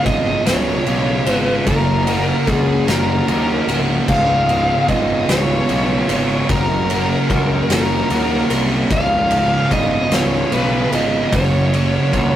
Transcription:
0.04 picked electric bass G#1, distorted electric guitar C#3 G#3 B3 F4, lead electric guitar D#5, kick, ride
0.45 picked electric bass C#1, distorted electric guitar C#3 G#3 B3 F4, lead electric guitar C#5, snare, ride
0.85 picked electric bass B1, distorted electric guitar C#3 G#3 B3 F4, ride
1.25 picked electric bass G#1, distorted electric guitar C#3 G#3 B3 F4, ride
1.31 lead electric guitar B4
1.65 picked electric bass F#1, distorted electric guitar F#2 C#3 F#3 A#3 C#4 F#4, lead electric guitar A#4, kick, ride
2.06 distorted electric guitar F#3 A#3 C#4 F#4, ride
2.46 picked electric bass C#2, distorted electric guitar F#3 A#3 C#4 F#4, kick, ride
2.52 lead electric guitar G#4
2.87 picked electric bass F#1, distorted electric guitar F#3 A#3 C#4 F#4, lead electric guitar A#4, snare, ride
3.27 picked electric bass D#2, distorted electric guitar F#3 A#3 C#4 F#4, ride
3.67 picked electric bass C#1, distorted electric guitar F#3 A#3 C#4 F#4, ride
4.07 picked electric bass C#1, distorted electric guitar C#2 G#2 C#3 G#3 B3 F4, string section B4 F5 G#5 C#6, lead electric guitar F5, kick, crash
4.47 distorted electric guitar C#3 G#3 B3 F4, ride
4.87 picked electric bass G#1, distorted electric guitar C#3 G#3 B3 F4, lead electric guitar D#5, kick, ride
5.27 picked electric bass C#1, distorted electric guitar C#3 G#3 B3 F4, lead electric guitar C#5, snare, ride
5.68 picked electric bass B1, distorted electric guitar C#3 G#3 B3 F4, ride
6.07 picked electric bass G#1, distorted electric guitar C#3 G#3 B3 F4, ride
6.47 picked electric bass F#1, distorted electric guitar F#2 C#3 F#3 A#3 C#4 F#4, string section A#4 C#5 F#5 C#6, lead electric guitar A#4, kick, ride
6.88 distorted electric guitar F#3 A#3 C#4 F#4, ride
7.28 picked electric bass C#2, distorted electric guitar F#3 A#3 C#4 F#4, kick, ride
7.68 picked electric bass F#1, distorted electric guitar F#3 A#3 C#4 F#4, snare, ride
7.73 lead electric guitar A#4
8.09 picked electric bass D#2, distorted electric guitar F#3 A#3 C#4 F#4, ride
8.49 picked electric bass C2, distorted electric guitar F#3 A#3 C#4 F#4, ride
8.89 picked electric bass C#1, distorted electric guitar C#2 G#2 C#3 G#3 B3 F4, string section G#4 F5 B5, lead electric guitar F5, kick, ride
9.30 distorted electric guitar C#3 G#3 B3 F4, ride
9.70 picked electric bass G#1, distorted electric guitar C#3 G#3 B3 F4, lead electric guitar D#5, kick, ride
10.11 picked electric bass C#1, distorted electric guitar C#3 G#3 B3 F4, lead electric guitar C#5, snare, ride
10.51 picked electric bass B1, distorted electric guitar C#3 G#3 B3 F4, lead electric guitar B4, ride
10.91 picked electric bass G#1, distorted electric guitar C#3 G#3 B3 F4, lead electric guitar D#5, ride
11.31 picked electric bass F#1, distorted electric guitar F#2 C#3 F#3 A#3 C#4 F#4, string section A#4 F#5 C#6, lead electric guitar C#5, kick, ride
11.72 distorted electric guitar F#3 A#3 C#4 F#4, ride
12.12 picked electric bass C#2, distorted electric guitar F#3 A#3 C#4 F#4, kick, ride

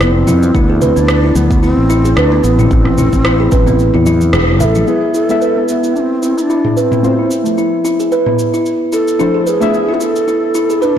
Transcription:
Already playing: singing bowl D5
0.01 fretless electric bass F1, native american-style wooden flute C4, cross-stick, cabasa
0.16 high conga
0.27 fretless electric bass F2, kalimba E4, low conga, cabasa
0.43 high conga, cabasa
0.55 fretless electric bass D2, native american-style wooden flute B3, kalimba E4, kick, cabasa
0.70 kalimba G#4
0.81 native american-style wooden flute C4, kalimba B4, low conga, cabasa
0.96 fretless electric bass D2, kalimba B3, native american-style wooden flute D4, cabasa
1.08 cross-stick, cabasa
1.24 kalimba E4
1.35 fretless electric bass D2, native american-style wooden flute B3, high conga, cabasa
1.51 kick, cabasa
1.63 native american-style wooden flute C4, kalimba E4, cabasa
1.77 fretless electric bass A1, muted conga
1.90 kalimba E4, cabasa
2.05 kalimba G#4, muted conga, high conga, cabasa
2.16 fretless electric bass D2, native american-style wooden flute D4, kalimba B4, cross-stick, cabasa
2.32 kalimba B3
2.44 fretless electric bass A1, native american-style wooden flute B3, cabasa
2.59 native american-style wooden flute C4, kalimba E4, mid tom, muted conga, high conga, cabasa
2.71 fretless electric bass A1, kick, cabasa
2.85 cross-stick, mid tom
2.98 kalimba E4, muted conga, low conga, cabasa
3.13 fretless electric bass A1, kick, muted conga, cabasa
3.25 kalimba E4, cross-stick, cabasa
3.40 kalimba G#4
3.52 fretless electric bass A1, kalimba B4, kick, high conga, cabasa
3.67 kalimba B3, low conga, cabasa
3.79 cabasa
3.94 fretless electric bass E2, kalimba E4, mid tom
4.06 kalimba E4, high conga, cabasa
4.21 high conga, cabasa
4.33 fretless electric bass E1, kalimba G#4, cross-stick, cabasa
4.49 high conga
4.60 fretless electric bass A1, native american-style wooden flute B4, kalimba E5, muted conga, low conga, cabasa
4.64 native american-style wooden flute A4
4.75 kalimba E4, high conga, cabasa
4.87 synth stab G#3 B3 E4 B4, kalimba E4, native american-style wooden flute G#4, singing bowl E5, cabasa
5.14 kalimba E4, native american-style wooden flute A4, cabasa
5.29 synth stab G#3 B3 E4 E5, kalimba G#4, cabasa
5.41 kalimba B4, cabasa
5.56 kalimba B3
5.69 native american-style wooden flute B3, cabasa
5.84 kalimba E4, cabasa
5.96 native american-style wooden flute D4, cabasa
6.00 native american-style wooden flute C4
6.22 kalimba E4, cabasa
6.38 native american-style wooden flute E4, cabasa
6.42 native american-style wooden flute D4
6.50 kalimba E4, cabasa
6.65 kalimba G#4, mid tom
6.77 native american-style wooden flute D4, kalimba B4, cabasa
6.81 native american-style wooden flute C4
6.92 kalimba B3, mid tom, cabasa
7.02 synth stab A3 C4 F4 C5, cabasa
7.19 kalimba E4
7.31 cabasa
7.44 synth stab F3 A3, cabasa
7.58 kalimba E4, cabasa
7.85 kalimba E4, cabasa
8.00 kalimba G#4, cabasa
8.12 kalimba B4, cabasa
8.26 kalimba B3, mid tom
8.39 cabasa
8.54 kalimba E4, cabasa
8.66 cabasa
8.93 kalimba E4, native american-style wooden flute A4, cabasa
9.08 cabasa
9.19 synth stab F3 A3 D4 C5, kalimba E4, cabasa
9.34 kalimba G#4
9.46 native american-style wooden flute G#4, kalimba B4, cabasa
9.61 synth stab A3 D4 F4 E5, kalimba B3, cabasa
9.74 cabasa
9.89 kalimba E4
9.94 native american-style wooden flute B3
10.01 native american-style wooden flute A4, cabasa
10.16 cabasa
10.28 kalimba E4, cabasa
10.55 kalimba E4, cabasa
10.70 kalimba G#4, cabasa
10.82 native american-style wooden flute D4, kalimba B4, cabasa

